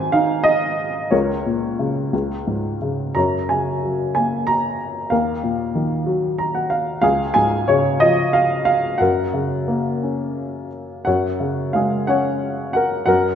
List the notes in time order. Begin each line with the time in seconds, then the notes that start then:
Already playing: G#2 D#3 C4 C5 G#5
0.12 D#4 F5
0.44 D#5
1.11 C#2 A#4 C#5
1.46 A#2
1.79 C#3
2.13 C#2
2.47 G#2
2.82 C#3
3.15 F#2 C#5 A#5
3.49 C#3 G#5
3.84 F#3
4.15 A#3 G#5
4.47 A#5
5.10 D#2 A#4 F5
5.44 A#2
5.75 D#3
6.06 F#3
6.38 A#5
6.55 F#5
6.70 F5
7.02 C#2 G#4 F5
7.34 G#2 G#5
7.68 C#3 C#5
8.00 F3 D#5
8.33 F5
8.65 F5
8.98 F#2 A#4 F#5
9.34 C#3
9.68 A#3
10.03 C#4
11.05 F#2 C#5 F#5
11.40 C#3
11.73 G#3 G#4 F5
12.07 C#4 C#5 F#5
12.73 A#4 F#5
13.06 F#2 A#4 F#5